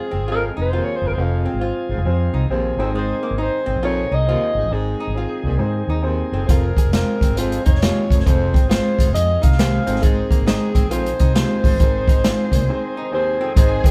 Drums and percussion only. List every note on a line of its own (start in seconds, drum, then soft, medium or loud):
6.49 kick medium
6.49 closed hi-hat medium
6.77 kick medium
6.77 closed hi-hat medium
6.93 snare loud
6.93 closed hi-hat medium
7.21 kick medium
7.21 closed hi-hat medium
7.37 closed hi-hat medium
7.52 closed hi-hat medium
7.66 kick medium
7.66 closed hi-hat medium
7.75 snare soft
7.82 snare loud
7.82 closed hi-hat loud
8.10 kick medium
8.10 closed hi-hat medium
8.20 snare soft
8.27 kick loud
8.27 closed hi-hat medium
8.54 kick medium
8.54 closed hi-hat medium
8.71 snare loud
8.71 closed hi-hat medium
8.99 kick medium
8.99 closed hi-hat medium
9.15 closed hi-hat medium
9.43 kick medium
9.43 closed hi-hat medium
9.52 snare soft
9.59 snare loud
9.59 closed hi-hat medium
9.87 closed hi-hat medium
9.96 snare soft
10.03 kick medium
10.03 closed hi-hat medium
10.31 kick medium
10.31 closed hi-hat medium
10.47 snare loud
10.47 closed hi-hat medium
10.75 kick medium
10.75 closed hi-hat medium
10.91 closed hi-hat medium
11.06 closed hi-hat medium
11.19 kick medium
11.19 closed hi-hat medium
11.35 snare loud
11.35 closed hi-hat loud
11.64 kick medium
11.64 open hi-hat medium
11.80 kick loud
11.80 closed hi-hat medium
12.08 kick loud
12.08 closed hi-hat medium
12.24 snare loud
12.24 closed hi-hat medium
12.52 kick medium
12.52 closed hi-hat medium
13.56 kick loud
13.56 closed hi-hat medium
13.84 kick medium
13.84 closed hi-hat medium